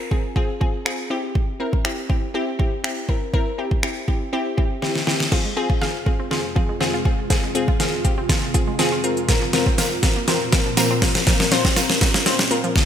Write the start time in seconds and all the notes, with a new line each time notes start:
0.11 C4 F4 G#4, kick
0.36 C4 F4 G#4, kick
0.61 C4 F4 G#4, kick
0.85 C4 F4 G#4, finger snap
1.10 C4 E4 G4
1.35 kick
1.60 C4 E4 A#4
1.73 kick
1.85 C4 E4 G4, finger snap
2.09 C4 E4 G4, kick
2.34 C4 E4 G4
2.59 C4 E4 G4, kick
2.84 C4 E4 G4, finger snap
3.09 C4 E4 A#4, kick
3.33 C4 E4 A#4, kick
3.58 C4 E4 G4
3.71 kick
3.83 C4 E4 G4, finger snap
4.08 C4 E4 G4, kick
4.33 C4 E4 G4
4.57 C4 E4 G4, kick
4.82 C4 E4 G4, snare
4.95 snare
5.07 C4 E4 G4, snare
5.20 snare
5.32 F2 C3 F3 G#3 C4 F4 G#4, kick, snare, crash
5.45 G#3
5.56 C4 F4 G#4
5.70 F4, kick
5.81 C4 F4 G#4 F5, snare
6.06 C4 F4 G#4, kick
6.19 C4
6.31 C4 F4 G#4, snare
6.56 F3 C4 F4 G#4, kick
6.69 G#3
6.80 C4 F4 G#4, snare
6.94 F4
7.05 C4 F4 G#4, kick
7.30 F3 C4 F4 G#4, kick, snare, closed hi-hat
7.43 G#3
7.55 C4 F4 G#4, closed hi-hat
7.68 F4, kick
7.80 C4 F4 G#4 F5, snare, closed hi-hat
8.04 C4 F4 G4, kick, closed hi-hat
8.18 C4
8.29 C4 F4 G#4, kick, snare, closed hi-hat
8.54 F3 C4 F4 G#4, kick, closed hi-hat
8.67 G#3
8.79 C4 F4 G#4, snare, closed hi-hat
8.92 F4
9.04 C4 F4 A#4, closed hi-hat
9.17 closed hi-hat
9.28 A#2 A#3 C4 F4 A#4, kick, snare, closed hi-hat
9.42 F3
9.53 C4 F4 A#4, snare, closed hi-hat
9.66 C4, kick
9.78 C4 F4 A#4, snare, closed hi-hat, tambourine
10.03 C4 F4 A#4, kick, snare, closed hi-hat
10.16 A#3
10.28 C4 F4 A#4, snare, closed hi-hat
10.52 A#2 C4 F4 A#4, kick, snare, closed hi-hat
10.66 F3
10.77 A#3 C4 F4 A#4, snare, closed hi-hat, tambourine
10.91 C4
11.02 C4 F4 A#4, kick, snare, open hi-hat
11.15 snare, closed hi-hat
11.27 A#2 C4 F4 A#4, kick, snare, closed hi-hat
11.40 F3, snare
11.52 C4 F4 C5, snare, closed hi-hat
11.65 C4, kick, snare
11.76 C4 F4 A#4, snare, closed hi-hat, tambourine
11.90 snare
12.01 C4 F4 A#4, kick, snare, closed hi-hat
12.14 A#3, snare
12.26 C4 F4 C5, snare, closed hi-hat
12.39 snare
12.51 A#2 C4 F4 A#4, closed hi-hat
12.64 F3, closed hi-hat
12.76 kick, snare